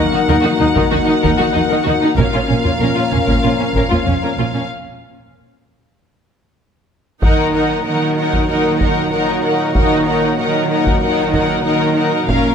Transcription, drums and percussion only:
0.76 taiko
1.24 taiko
2.18 taiko
2.65 taiko low-mid
3.12 taiko low-mid
3.28 taiko
3.75 taiko
3.91 taiko low-mid
4.07 taiko low-mid
7.23 taiko
8.33 taiko
8.81 taiko
9.75 taiko
10.86 taiko
11.34 taiko
12.28 taiko

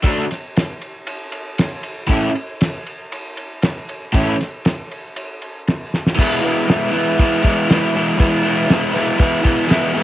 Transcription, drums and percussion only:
0.04 kick, ride
0.31 snare, ride
0.57 snare, ride
0.82 ride
1.07 ride
1.32 ride
1.59 snare, ride
1.84 ride
2.09 kick, ride
2.36 ride
2.61 snare, ride
2.86 ride
3.12 ride
3.37 ride
3.62 snare, ride
3.89 ride
4.14 kick, ride
4.41 snare, ride
4.65 snare, ride
4.91 ride
5.16 ride
5.42 ride
5.67 snare, ride
5.94 snare
6.06 snare
6.19 kick, crash
6.44 crash
6.69 snare, crash
6.94 crash
7.19 kick, crash
7.44 kick, crash
7.70 snare, crash
7.95 crash
8.19 kick, crash
8.44 crash
8.69 snare, crash
8.95 snare, crash
9.19 kick, crash
9.45 kick, crash
9.70 snare, crash
9.95 crash

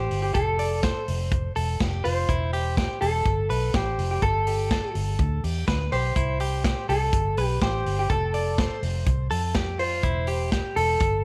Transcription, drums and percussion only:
0.11 open hi-hat
0.35 kick, closed hi-hat
0.59 open hi-hat
0.83 kick, snare, closed hi-hat
1.08 open hi-hat
1.32 kick, closed hi-hat
1.56 open hi-hat
1.80 kick, snare, closed hi-hat
2.05 open hi-hat
2.29 kick, closed hi-hat
2.53 open hi-hat
2.77 kick, snare, closed hi-hat
3.02 open hi-hat
3.26 kick, closed hi-hat
3.50 open hi-hat
3.74 kick, snare, closed hi-hat
3.99 open hi-hat
4.22 kick, closed hi-hat
4.47 open hi-hat
4.71 kick, snare, closed hi-hat
4.95 open hi-hat
5.19 kick, closed hi-hat
5.44 open hi-hat
5.68 kick, snare, closed hi-hat
5.92 open hi-hat
6.16 kick, closed hi-hat
6.40 open hi-hat
6.64 kick, snare, closed hi-hat
6.89 open hi-hat
7.13 kick, closed hi-hat
7.37 open hi-hat
7.62 kick, snare, closed hi-hat
7.86 open hi-hat
8.10 kick, closed hi-hat
8.34 open hi-hat
8.58 kick, snare, closed hi-hat
8.83 open hi-hat
9.06 kick, closed hi-hat
9.31 open hi-hat
9.54 kick, snare, closed hi-hat
9.79 open hi-hat
10.03 kick, closed hi-hat
10.27 open hi-hat
10.52 kick, snare, closed hi-hat
10.76 open hi-hat
11.00 kick, closed hi-hat

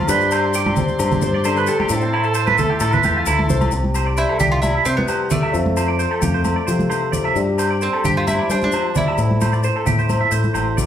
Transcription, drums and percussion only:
0.08 maracas
0.21 maracas
0.31 low agogo, maracas
0.54 maracas
0.66 high conga, low agogo
0.76 low conga, maracas
0.88 maracas
0.99 low agogo, maracas
1.11 low conga, maracas
1.22 high conga, maracas
1.44 low agogo, maracas
1.56 maracas
1.67 maracas
1.80 high conga, low agogo
1.89 maracas
2.01 maracas
2.13 low agogo
2.23 maracas
2.34 maracas
2.47 high conga, low agogo, maracas
2.58 low conga, maracas
2.80 low agogo, maracas
2.92 low conga, maracas
3.03 high conga, maracas
3.26 low agogo, maracas
3.39 high conga
3.49 low conga, maracas
3.61 high conga, low agogo, maracas
3.71 maracas
3.84 high conga
3.95 low agogo, maracas
4.17 maracas
4.29 low agogo
4.40 low conga, maracas
4.62 high conga, low agogo, maracas
4.85 maracas
4.98 high conga
5.08 low agogo, maracas
5.30 low conga, maracas
5.43 low agogo
5.54 maracas
5.66 high conga
5.77 low agogo, maracas
5.99 maracas
6.11 low agogo
6.22 low conga, maracas
6.45 high conga, low agogo, maracas
6.68 maracas
6.79 high conga, maracas
6.90 low agogo, maracas
7.13 low conga, maracas
7.24 low agogo
7.36 maracas
7.58 low agogo, maracas
7.81 maracas
7.93 low agogo
8.04 low conga, maracas
8.27 high conga, low agogo, maracas
8.50 maracas
8.62 high conga, maracas
8.72 low agogo, maracas
8.95 low conga, maracas
9.08 low agogo
9.18 maracas
9.31 high conga
9.41 high conga, low agogo, maracas
9.53 maracas
9.63 maracas
9.76 low agogo
9.86 low conga, maracas
9.99 maracas
10.09 high conga, low agogo, maracas
10.31 maracas
10.44 high conga, maracas
10.55 low agogo, maracas
10.78 low conga, maracas

